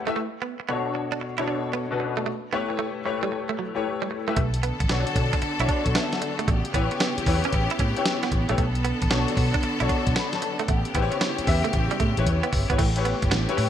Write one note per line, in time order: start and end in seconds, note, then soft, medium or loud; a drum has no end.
0.00 0.07 A3 medium
0.00 0.07 E4 medium
0.00 0.07 G4 medium
0.00 0.08 B4 medium
0.00 0.18 C#5 loud
0.00 0.08 E5 loud
0.00 0.14 F#5 medium
0.00 0.18 A5 medium
0.07 0.16 A3 medium
0.07 0.13 A3 medium
0.07 0.16 E4 medium
0.07 0.16 G4 medium
0.07 0.16 B4 medium
0.07 0.16 E5 loud
0.16 0.28 A3 medium
0.42 0.54 B3 medium
0.60 muted clean electric guitar stroke soft
0.69 1.24 B2 medium
0.69 0.81 B3 medium
0.69 1.24 D4 medium
0.69 1.24 F#4 medium
0.69 1.24 A4 medium
0.69 1.24 C#5 medium
0.95 muted clean electric guitar stroke soft
1.12 1.18 D4 medium
1.21 muted clean electric guitar stroke soft
1.38 1.79 B2 medium
1.38 1.79 D4 medium
1.38 1.44 E4 medium
1.38 1.80 F#4 medium
1.38 1.80 A4 medium
1.38 1.80 C#5 loud
1.48 1.60 D4 medium
1.73 1.86 B3 medium
1.91 2.26 B2 medium
1.91 1.95 C#4 medium
1.91 2.26 F#4 medium
1.91 2.27 A4 medium
1.91 2.27 B4 medium
1.97 2.29 D4 medium
1.97 muted clean electric guitar stroke soft
2.17 2.23 A3 medium
2.26 2.38 A3 medium
2.53 2.99 A3 medium
2.53 2.65 B3 medium
2.53 2.99 E4 medium
2.53 2.99 G4 medium
2.53 3.00 B4 medium
2.53 3.00 C#5 loud
2.70 muted clean electric guitar stroke soft
2.79 2.91 A3 medium
3.05 3.60 A3 medium
3.05 3.61 E4 medium
3.05 3.61 G4 medium
3.05 3.61 B4 medium
3.05 3.61 C#5 loud
3.05 muted clean electric guitar stroke soft
3.23 3.29 G3 medium
3.32 muted clean electric guitar stroke soft
3.49 3.55 A3 medium
3.59 3.71 F#3 medium
3.75 4.16 A3 medium
3.75 4.16 E4 medium
3.75 4.16 G4 medium
3.75 4.16 B4 medium
3.75 4.16 C#5 loud
4.02 4.08 G3 medium
4.11 muted clean electric guitar stroke soft
4.28 4.34 A3 medium
4.28 4.37 A3 medium
4.28 4.37 E4 medium
4.28 4.37 G4 medium
4.28 4.37 B4 medium
4.28 4.38 E5 medium
4.36 4.70 B1 medium
4.36 6.45 D3 medium
4.36 4.49 A3 medium
4.36 12.75 B3 medium
4.36 6.45 A4 medium
4.36 kick loud
4.36 closed hi-hat medium
4.54 closed hi-hat medium
4.63 4.75 B3 medium
4.63 closed hi-hat medium
4.80 4.87 A1 medium
4.80 muted clean electric guitar stroke soft
4.80 kick medium
4.80 closed hi-hat medium
4.89 5.03 B1 loud
4.89 5.02 B3 medium
4.89 5.45 D4 medium
4.89 5.45 F#4 medium
4.89 5.45 A4 medium
4.89 5.45 C#5 medium
4.89 snare loud
4.89 closed hi-hat medium
5.07 closed hi-hat medium
5.16 5.29 B2 medium
5.16 muted clean electric guitar stroke soft
5.16 kick medium
5.16 closed hi-hat medium
5.33 5.39 D4 medium
5.33 kick loud
5.33 closed hi-hat soft
5.42 muted clean electric guitar stroke soft
5.42 muted fingered electric bass stroke soft
5.42 closed hi-hat medium
5.59 5.66 B1 medium
5.59 6.00 D4 medium
5.59 5.66 E4 medium
5.59 5.95 F#4 medium
5.59 5.95 A4 medium
5.59 5.96 C#5 loud
5.59 closed hi-hat soft
5.69 5.81 D4 medium
5.69 kick medium
5.69 closed hi-hat medium
5.86 5.93 B1 medium
5.86 kick medium
5.86 closed hi-hat medium
5.95 6.07 B3 medium
5.95 6.12 E5 medium
5.95 snare loud
5.95 closed hi-hat medium
6.12 6.38 A4 medium
6.12 6.38 F#5 medium
6.12 snare medium
6.12 closed hi-hat soft
6.22 muted clean electric guitar stroke soft
6.22 closed hi-hat medium
6.39 6.45 A3 medium
6.39 6.64 F#4 medium
6.39 6.64 D5 medium
6.39 closed hi-hat medium
6.47 6.61 A1 loud
6.47 8.56 C#3 medium
6.47 6.60 A3 medium
6.47 8.56 G4 medium
6.47 kick loud
6.47 closed hi-hat medium
6.65 closed hi-hat medium
6.74 6.87 A1 medium
6.74 6.86 B3 medium
6.74 7.20 E4 loud
6.74 7.20 G4 medium
6.74 7.21 B4 loud
6.74 7.21 C#5 loud
6.74 kick medium
6.74 closed hi-hat medium
6.91 muted clean electric guitar stroke soft
6.91 closed hi-hat soft
7.00 7.13 B3 medium
7.00 snare loud
7.00 closed hi-hat medium
7.18 muted fingered electric bass stroke soft
7.18 closed hi-hat medium
7.26 7.40 E2 medium
7.26 7.82 E4 medium
7.26 7.82 G4 medium
7.26 7.82 B4 medium
7.26 7.82 C#5 loud
7.26 muted clean electric guitar stroke soft
7.26 kick medium
7.26 open hi-hat medium
7.44 7.51 C#4 medium
7.44 closed hi-hat soft
7.53 7.66 A1 medium
7.53 muted clean electric guitar stroke medium
7.53 kick medium
7.53 closed hi-hat medium
7.70 7.77 E4 medium
7.70 closed hi-hat medium
7.79 7.92 A2 loud
7.79 7.92 C#4 medium
7.79 kick medium
7.79 closed hi-hat medium
7.96 8.37 E4 medium
7.96 8.37 G4 medium
7.96 8.38 B4 medium
7.96 8.38 C#5 loud
7.96 closed hi-hat medium
8.06 snare loud
8.06 closed hi-hat medium
8.23 8.29 B3 medium
8.23 snare medium
8.23 closed hi-hat soft
8.32 8.45 A1 medium
8.32 muted clean electric guitar stroke soft
8.32 kick medium
8.32 closed hi-hat medium
8.49 8.56 A#1 medium
8.49 8.56 A3 medium
8.49 8.58 E4 medium
8.49 8.58 G4 medium
8.49 8.59 B4 medium
8.49 8.59 C#5 loud
8.49 closed hi-hat medium
8.58 8.91 B1 loud
8.58 10.67 D3 medium
8.58 8.70 A3 medium
8.58 10.67 A4 medium
8.58 kick loud
8.58 closed hi-hat medium
8.75 closed hi-hat medium
8.85 8.97 B3 medium
8.85 closed hi-hat medium
9.02 9.09 A1 medium
9.02 muted clean electric guitar stroke soft
9.02 kick medium
9.02 closed hi-hat medium
9.10 9.24 B1 medium
9.10 9.23 B3 medium
9.10 9.66 D4 medium
9.10 9.66 F#4 medium
9.10 9.66 A4 medium
9.10 9.66 C#5 medium
9.10 snare loud
9.10 closed hi-hat medium
9.28 closed hi-hat medium
9.37 9.50 B2 loud
9.37 muted clean electric guitar stroke soft
9.37 kick medium
9.37 open hi-hat medium
9.54 9.61 D4 medium
9.54 kick loud
9.54 closed hi-hat medium
9.63 muted fingered electric bass stroke soft
9.63 muted clean electric guitar stroke soft
9.63 closed hi-hat medium
9.80 9.88 B1 medium
9.80 10.22 D4 medium
9.80 9.87 E4 medium
9.80 10.22 F#4 medium
9.80 10.16 A4 medium
9.80 10.17 C#5 loud
9.80 closed hi-hat soft
9.89 10.01 D4 medium
9.89 kick medium
9.89 closed hi-hat medium
10.07 10.14 B1 medium
10.07 kick medium
10.07 closed hi-hat medium
10.16 10.28 B3 medium
10.16 10.33 D5 medium
10.16 10.33 B5 medium
10.16 snare loud
10.16 closed hi-hat medium
10.33 10.59 C#5 medium
10.33 10.58 A5 medium
10.33 snare medium
10.33 closed hi-hat medium
10.42 muted clean electric guitar stroke soft
10.42 closed hi-hat medium
10.59 10.66 A3 medium
10.59 10.85 A4 medium
10.59 10.85 F#5 medium
10.59 closed hi-hat medium
10.68 10.82 A1 loud
10.68 12.77 C#3 medium
10.68 10.81 A3 medium
10.68 12.77 G4 medium
10.68 kick loud
10.68 closed hi-hat medium
10.85 closed hi-hat medium
10.95 11.08 A1 medium
10.95 11.07 B3 medium
10.95 11.41 E4 loud
10.95 11.41 G4 medium
10.95 11.42 B4 medium
10.95 11.04 C5 medium
10.95 kick medium
10.95 closed hi-hat medium
11.02 11.45 C#5 loud
11.12 muted clean electric guitar stroke soft
11.12 closed hi-hat medium
11.21 11.33 B3 medium
11.21 snare loud
11.21 closed hi-hat medium
11.38 muted fingered electric bass stroke soft
11.38 closed hi-hat medium
11.47 11.61 E2 medium
11.47 12.02 E4 medium
11.47 12.03 G4 medium
11.47 12.03 B4 medium
11.47 12.03 E5 loud
11.47 muted clean electric guitar stroke soft
11.47 kick medium
11.47 open hi-hat medium
11.64 11.71 A3 medium
11.64 closed hi-hat soft
11.73 11.87 A1 loud
11.73 muted clean electric guitar stroke soft
11.73 kick medium
11.73 closed hi-hat medium
11.91 11.97 G3 medium
11.91 closed hi-hat soft
12.00 12.13 A2 medium
12.00 12.12 A3 medium
12.00 kick medium
12.00 closed hi-hat medium
12.17 12.24 A1 medium
12.17 12.58 E4 medium
12.17 12.58 G4 medium
12.17 12.59 B4 medium
12.17 12.59 C#5 medium
12.17 closed hi-hat medium
12.26 12.40 E2 medium
12.26 kick medium
12.26 closed hi-hat medium
12.43 12.50 B3 medium
12.43 closed hi-hat soft
12.53 12.66 G1 medium
12.53 muted clean electric guitar stroke soft
12.53 kick medium
12.53 open hi-hat medium
12.70 12.77 G#1 medium
12.70 12.76 B3 medium
12.70 12.79 E4 medium
12.70 12.79 G4 medium
12.70 12.80 B4 medium
12.70 12.80 C#5 loud
12.70 kick medium
12.70 closed hi-hat medium
12.79 13.12 A1 loud
12.79 13.69 C#3 medium
12.79 12.91 A3 medium
12.79 13.69 A3 medium
12.79 13.69 G4 medium
12.79 kick loud
12.79 closed hi-hat medium
12.79 crash medium
12.96 13.37 E4 medium
12.96 13.37 G4 medium
12.96 13.38 B4 medium
12.96 13.38 C#5 loud
12.96 closed hi-hat medium
13.05 13.17 B3 medium
13.05 closed hi-hat medium
13.22 13.30 G1 medium
13.22 muted clean electric guitar stroke soft
13.22 kick medium
13.22 closed hi-hat soft
13.31 13.45 A1 loud
13.31 13.43 B3 medium
13.31 snare loud
13.31 closed hi-hat medium
13.48 13.69 E4 loud
13.48 13.69 G4 medium
13.48 13.69 B4 medium
13.48 13.69 C#5 loud
13.48 closed hi-hat medium
13.57 13.69 A2 loud
13.57 muted clean electric guitar stroke soft
13.57 open hi-hat medium